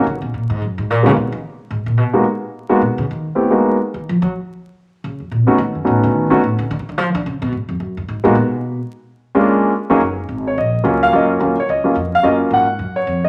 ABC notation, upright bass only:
X:1
M:4/4
L:1/8
Q:"Swing" 1/4=217
K:Ebm
V:1 name="Upright bass" clef=bass
D, C, B,, A,, G,, A,, B,, D, | C, E, z2 A,, B,, C, z | z4 C, D, E, z | z4 E, F, G, z |
z4 D, F,, B,, D, | ^D, ^F,, =A,, _D, ^D, F,, A,, _D, | (3=D, _D, =D, F, D, _D, C, A,, F,, | G,, =G,, A,, B,, C,3 z |
z8 | G,,,2 A,,,2 B,,,2 D,,2 | G,,2 E,, z D,,2 F,,2 | G,,2 A,,2 G,,2 F,,2 |]